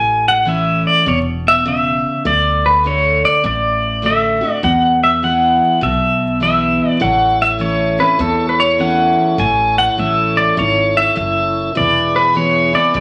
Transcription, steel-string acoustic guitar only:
0.00 1.02 A2 medium
0.45 1.03 E3 medium
0.45 1.04 A3 medium
0.45 1.04 C#4 medium
0.45 1.04 E4 medium
1.06 1.64 B2 medium
1.66 2.23 C#3 medium
2.25 2.83 D3 medium
2.84 3.42 D3 medium
2.84 3.42 A3 medium
2.84 3.42 D4 medium
2.84 3.43 F#4 medium
3.44 4.59 A2 medium
4.02 4.40 D3 medium
4.02 4.40 A3 medium
4.02 4.41 D4 medium
4.02 4.40 F#4 medium
4.41 4.62 D4 soft
4.41 4.61 F#4 medium
4.63 5.78 E2 medium
5.22 5.80 E3 soft
5.22 5.80 G#3 medium
5.22 5.80 B3 medium
5.22 5.81 E4 medium
5.81 6.96 B2 medium
6.40 6.98 E3 soft
6.40 6.98 G#3 soft
6.40 6.99 B3 medium
6.40 6.99 E4 medium
7.00 8.15 A2 medium
7.59 7.96 E3 medium
7.59 7.97 A3 medium
7.59 7.97 C#4 medium
7.59 7.97 E4 soft
7.98 8.20 C#4 soft
7.98 8.18 E4 medium
8.19 9.34 E2 medium
8.78 9.36 E3 medium
8.78 9.36 A3 medium
8.78 9.37 C#4 medium
8.78 9.37 E4 medium
9.38 10.53 A2 medium
9.97 10.55 E3 medium
9.97 10.55 A3 medium
9.97 10.56 C#4 medium
9.97 10.56 E4 medium
10.57 11.14 G#2 medium
11.16 11.73 F#2 medium
11.75 12.90 E2 medium
12.34 12.72 E3 soft
12.34 12.72 G#3 medium
12.34 12.73 B3 medium
12.34 12.72 E4 medium
12.73 12.95 B3 soft
12.73 12.93 E4 medium
12.94 13.00 F#2 medium

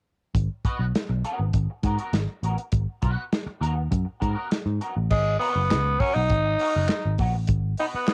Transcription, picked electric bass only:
0.35 0.47 G#1 medium
0.79 0.92 B1 medium
1.09 1.22 B1 medium
1.39 1.52 G#1 medium
1.54 1.66 G#1 medium
1.83 1.96 G#2 loud
2.13 2.26 G#1 medium
2.43 2.56 A1 medium
2.73 2.85 G#1 medium
3.03 3.15 B1 medium
3.46 muted picked electric bass stroke soft
3.61 3.87 D#2 medium
3.91 4.04 F#2 medium
4.22 4.34 G#2 medium
4.66 4.79 G#2 medium
4.96 5.09 A1 medium
5.11 5.36 G#1 loud
5.56 5.73 F#1 medium
5.71 5.96 C#2 medium
6.16 6.28 B1 medium
6.30 6.55 G#1 medium
6.76 6.88 F#1 medium
7.06 7.18 G#1 medium
7.19 7.36 A#1 medium
7.36 7.47 A1 medium
7.49 7.74 G#1 loud
7.95 muted picked electric bass stroke soft

